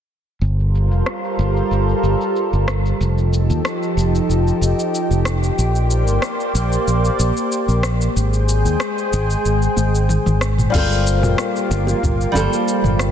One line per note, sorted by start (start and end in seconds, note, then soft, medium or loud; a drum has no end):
0.41 0.91 G1 medium
0.41 2.97 G3 medium
0.41 2.97 F4 medium
0.41 2.97 A4 medium
0.41 2.97 A#4 medium
0.41 2.97 C5 medium
0.41 shaker soft
0.60 shaker soft
0.75 shaker medium
0.91 1.01 F1 medium
0.91 shaker soft
1.06 cross-stick medium
1.06 shaker soft
1.24 shaker soft
1.39 1.60 G1 medium
1.39 shaker medium
1.57 shaker soft
1.71 1.92 G1 medium
1.71 shaker soft
1.89 shaker soft
2.03 2.14 G1 medium
2.03 shaker medium
2.21 shaker soft
2.36 shaker soft
2.53 2.91 G1 medium
2.53 shaker soft
2.68 cross-stick medium
2.68 shaker medium
2.86 shaker soft
2.99 3.51 F1 medium
2.99 5.55 F3 medium
2.99 5.55 D#4 medium
2.99 8.12 G4 medium
2.99 5.55 A4 medium
2.99 shaker soft
3.18 shaker soft
3.33 shaker medium
3.50 3.59 D#2 medium
3.50 shaker soft
3.65 cross-stick medium
3.65 shaker soft
3.83 shaker soft
3.97 4.18 F1 medium
3.97 shaker medium
4.15 shaker soft
4.29 4.50 F1 medium
4.29 shaker soft
4.48 shaker soft
4.61 4.72 F1 medium
4.61 shaker medium
4.79 shaker soft
4.95 shaker soft
5.11 5.49 F1 medium
5.11 shaker soft
5.25 cross-stick medium
5.25 shaker medium
5.43 shaker soft
5.58 6.07 A#1 medium
5.58 8.13 A#3 medium
5.58 8.13 C5 medium
5.58 8.13 D5 medium
5.58 shaker soft
5.75 shaker soft
5.91 shaker medium
6.07 6.17 G1 medium
6.07 shaker soft
6.22 cross-stick medium
6.22 shaker soft
6.40 shaker soft
6.55 6.76 A#1 medium
6.55 shaker medium
6.72 shaker soft
6.87 7.08 A#1 medium
6.87 shaker soft
7.05 shaker soft
7.19 7.30 A#1 medium
7.19 shaker medium
7.37 shaker soft
7.52 shaker soft
7.68 8.07 A#1 medium
7.68 shaker soft
7.83 cross-stick medium
7.83 shaker medium
8.01 shaker soft
8.16 8.67 G#1 medium
8.16 10.72 G#3 medium
8.16 10.72 G#4 medium
8.16 10.72 C5 medium
8.16 10.72 G5 medium
8.16 shaker soft
8.33 shaker soft
8.49 shaker medium
8.65 8.75 D#2 medium
8.65 shaker soft
8.80 cross-stick medium
8.80 shaker soft
8.98 shaker soft
9.13 9.34 G#1 loud
9.13 shaker medium
9.30 shaker soft
9.45 9.66 G#1 medium
9.45 shaker soft
9.62 shaker soft
9.77 10.17 G#1 medium
9.77 high tom medium
9.77 shaker medium
9.95 shaker soft
10.09 mid tom medium
10.09 shaker soft
10.26 10.65 G#1 medium
10.26 mid tom medium
10.26 shaker soft
10.41 cross-stick medium
10.41 shaker medium
10.58 mid tom medium
10.58 shaker soft
10.70 12.30 G3 medium
10.70 12.31 F4 medium
10.70 crash medium
10.74 11.24 G1 medium
10.74 13.11 A#3 medium
10.74 13.11 F4 medium
10.74 13.11 G4 medium
10.74 12.32 A4 medium
10.74 12.33 A#4 medium
10.74 kick loud
10.74 high bongo medium
10.74 shaker soft
10.78 12.34 C5 medium
10.92 shaker soft
11.07 shaker medium
11.23 11.33 F1 medium
11.23 mid tom medium
11.23 high bongo medium
11.23 shaker soft
11.38 cross-stick medium
11.38 shaker soft
11.56 shaker soft
11.71 11.92 G1 medium
11.71 shaker medium
11.87 high bongo medium
11.87 high conga medium
11.87 shaker soft
12.03 12.24 G1 medium
12.03 kick loud
12.03 mid tom medium
12.03 shaker soft
12.21 shaker soft
12.32 12.46 G1 medium
12.32 13.11 G3 medium
12.32 13.11 F4 medium
12.32 13.11 A4 medium
12.32 high bongo medium
12.32 high conga medium
12.32 low conga medium
12.36 12.39 A#4 medium
12.36 13.11 C5 loud
12.36 shaker medium
12.53 shaker soft
12.68 shaker soft
12.84 13.11 G1 medium
12.84 mid tom medium
12.84 high conga medium
12.84 shaker soft
12.99 cross-stick medium
12.99 high bongo soft
12.99 shaker medium